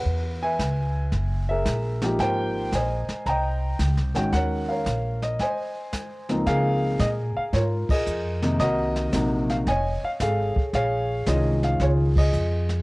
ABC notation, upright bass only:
X:1
M:4/4
L:1/8
Q:"Swing" 1/4=112
K:Ab
V:1 name="Upright bass" clef=bass
_F,,2 D,,2 _G,,,2 B,,,2 | A,,,2 B,,, z C,,2 (3D,, C,, A,,, | E,,2 B,,,2 z4 | [K:Db] D,2 B,, z A,, z F,,2 |
C,,2 B,,,2 F,,, z ^G,,, z | B,,,2 C,,2 D,,2 F,,2 |]